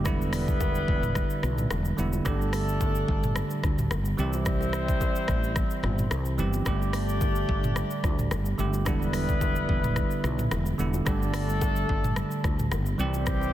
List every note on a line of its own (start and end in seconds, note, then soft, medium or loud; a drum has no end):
0.04 0.84 E1 loud
0.04 0.79 D3 medium
0.04 0.80 G3 medium
0.04 1.94 G3 medium
0.04 1.94 B3 medium
0.04 0.80 B3 medium
0.04 1.94 E4 medium
0.04 0.80 E4 loud
0.04 1.94 B4 loud
0.04 kick loud
0.04 cross-stick loud
0.04 low conga medium
0.04 shaker medium
0.22 shaker soft
0.33 cross-stick medium
0.33 open hi-hat medium
0.33 shaker medium
0.48 kick medium
0.48 shaker medium
0.61 kick loud
0.61 high bongo medium
0.61 shaker medium
0.75 shaker medium
0.88 1.22 E1 medium
0.88 kick medium
1.03 mid tom loud
1.03 shaker medium
1.15 kick loud
1.15 cross-stick medium
1.15 low conga medium
1.15 shaker medium
1.30 shaker medium
1.43 1.65 B1 loud
1.43 cross-stick medium
1.43 low bongo medium
1.43 shaker medium
1.58 mid tom medium
1.58 shaker medium
1.71 1.93 E1 loud
1.71 cross-stick loud
1.71 high bongo medium
1.71 shaker medium
1.85 shaker medium
1.97 2.20 E1 loud
1.97 2.17 D3 medium
1.97 2.17 G3 medium
1.97 2.18 B3 medium
1.97 2.18 E4 medium
1.97 low conga medium
1.97 shaker medium
2.13 low bongo medium
2.13 shaker medium
2.25 3.04 G1 loud
2.25 2.99 D3 medium
2.25 3.00 G3 medium
2.25 3.88 A3 medium
2.25 3.00 A3 medium
2.25 3.88 D4 medium
2.25 3.01 G4 loud
2.25 3.88 A4 medium
2.25 kick loud
2.25 cross-stick loud
2.25 low conga medium
2.25 shaker medium
2.42 shaker soft
2.53 cross-stick medium
2.53 open hi-hat medium
2.53 shaker medium
2.69 shaker medium
2.81 kick loud
2.81 high bongo medium
2.81 shaker medium
2.95 shaker medium
3.08 3.42 G1 loud
3.08 kick medium
3.24 mid tom loud
3.24 shaker medium
3.36 cross-stick loud
3.36 low conga medium
3.36 shaker medium
3.50 shaker medium
3.63 3.92 D2 loud
3.63 kick medium
3.63 cross-stick medium
3.63 low bongo medium
3.63 shaker medium
3.79 mid tom medium
3.79 shaker medium
3.91 4.13 G1 medium
3.91 cross-stick loud
3.91 high bongo medium
3.91 shaker medium
4.05 shaker medium
4.17 5.06 C2 loud
4.17 5.06 E3 medium
4.17 5.07 G3 medium
4.17 6.35 G3 medium
4.17 6.35 C4 medium
4.17 5.07 C4 medium
4.17 6.35 E4 medium
4.17 5.08 G4 loud
4.17 6.35 C5 loud
4.17 low conga medium
4.17 shaker medium
4.33 low bongo medium
4.33 shaker medium
4.45 kick loud
4.45 cross-stick loud
4.45 low conga medium
4.45 shaker medium
4.61 high bongo medium
4.61 shaker soft
4.73 cross-stick medium
4.73 shaker medium
4.88 kick medium
4.88 shaker medium
5.01 kick loud
5.01 high bongo medium
5.01 shaker medium
5.15 shaker medium
5.28 5.62 A1 medium
5.28 kick medium
5.28 cross-stick loud
5.28 shaker soft
5.44 shaker medium
5.56 kick loud
5.56 cross-stick loud
5.56 low conga medium
5.56 shaker medium
5.70 shaker medium
5.83 6.05 G1 loud
5.83 cross-stick medium
5.83 mid tom medium
5.83 low bongo medium
5.99 mid tom medium
5.99 shaker medium
6.11 6.40 C2 loud
6.11 cross-stick loud
6.11 high bongo medium
6.11 shaker medium
6.25 shaker medium
6.37 6.60 G1 medium
6.37 6.57 E3 medium
6.37 6.58 G3 medium
6.37 6.58 C4 medium
6.37 6.59 G4 loud
6.37 high bongo medium
6.37 low conga medium
6.37 shaker medium
6.53 low bongo medium
6.53 shaker medium
6.65 7.45 G1 loud
6.65 7.40 D3 medium
6.65 7.40 G3 medium
6.65 8.55 A3 medium
6.65 7.41 A3 medium
6.65 8.55 D4 medium
6.65 8.55 G4 medium
6.65 7.41 G4 loud
6.65 8.55 D5 loud
6.65 kick loud
6.65 cross-stick loud
6.65 low conga medium
6.65 shaker medium
6.82 shaker soft
6.93 cross-stick medium
6.93 open hi-hat medium
6.93 shaker medium
7.09 shaker medium
7.21 kick loud
7.21 high bongo medium
7.21 shaker medium
7.36 shaker medium
7.49 7.83 G1 loud
7.49 kick medium
7.64 mid tom medium
7.64 shaker medium
7.76 cross-stick loud
7.76 low conga medium
7.76 shaker medium
7.91 shaker medium
8.04 8.33 D2 loud
8.04 kick medium
8.04 cross-stick medium
8.04 low bongo medium
8.04 shaker medium
8.19 mid tom medium
8.19 shaker medium
8.31 8.53 G1 loud
8.31 cross-stick medium
8.31 high bongo medium
8.31 shaker medium
8.46 shaker medium
8.58 8.86 G1 loud
8.58 8.77 D3 medium
8.58 8.78 G3 medium
8.58 8.78 A3 medium
8.58 8.79 G4 medium
8.58 low conga medium
8.58 shaker medium
8.73 low bongo medium
8.73 shaker medium
8.85 9.65 E1 loud
8.85 9.60 D3 medium
8.85 9.60 G3 medium
8.85 10.75 G3 medium
8.85 10.75 B3 medium
8.85 9.61 B3 medium
8.85 10.75 E4 medium
8.85 9.61 E4 loud
8.85 10.75 B4 loud
8.85 kick loud
8.85 cross-stick loud
8.85 low conga medium
8.85 shaker medium
9.02 shaker soft
9.13 cross-stick medium
9.13 open hi-hat medium
9.13 shaker medium
9.29 kick medium
9.29 shaker medium
9.41 kick loud
9.41 high bongo medium
9.41 shaker medium
9.56 shaker medium
9.69 10.03 E1 medium
9.69 kick medium
9.84 mid tom loud
9.84 shaker medium
9.96 kick loud
9.96 cross-stick medium
9.96 low conga medium
9.96 shaker medium
10.11 shaker medium
10.24 10.46 B1 loud
10.24 cross-stick medium
10.24 low bongo medium
10.24 shaker medium
10.39 mid tom medium
10.39 shaker medium
10.51 10.73 E1 loud
10.51 cross-stick loud
10.51 high bongo medium
10.51 shaker medium
10.66 shaker medium
10.78 11.01 E1 medium
10.78 10.98 D3 medium
10.78 10.98 G3 medium
10.78 10.98 B3 medium
10.78 10.99 E4 medium
10.78 low conga medium
10.78 shaker medium
10.94 low bongo medium
10.94 shaker medium
11.05 11.85 G1 loud
11.05 11.80 D3 medium
11.05 11.80 G3 medium
11.05 12.68 A3 medium
11.05 11.81 A3 medium
11.05 12.68 D4 medium
11.05 11.81 G4 loud
11.05 12.68 A4 loud
11.05 kick loud
11.05 cross-stick loud
11.05 low conga medium
11.05 shaker medium
11.23 shaker soft
11.34 cross-stick medium
11.34 open hi-hat medium
11.34 shaker medium
11.49 shaker medium
11.62 kick loud
11.62 high bongo medium
11.62 shaker medium
11.76 shaker medium
11.89 12.23 G1 loud
11.89 kick loud
12.04 mid tom loud
12.04 shaker medium
12.16 cross-stick loud
12.16 low conga medium
12.16 shaker medium
12.31 shaker medium
12.44 12.73 D2 loud
12.44 kick medium
12.44 cross-stick medium
12.44 low bongo medium
12.44 shaker medium
12.59 mid tom medium
12.59 shaker medium
12.72 12.93 G1 medium
12.72 cross-stick loud
12.72 high bongo medium
12.72 shaker medium
12.86 shaker medium
12.98 13.53 C2 loud
12.98 13.53 E3 medium
12.98 13.53 G3 medium
12.98 13.53 C4 medium
12.98 13.53 G4 loud
12.98 low conga medium
12.98 shaker medium
13.14 low bongo medium
13.14 shaker medium
13.26 kick loud
13.26 cross-stick loud
13.26 low conga medium
13.26 shaker medium
13.41 high bongo soft
13.41 shaker soft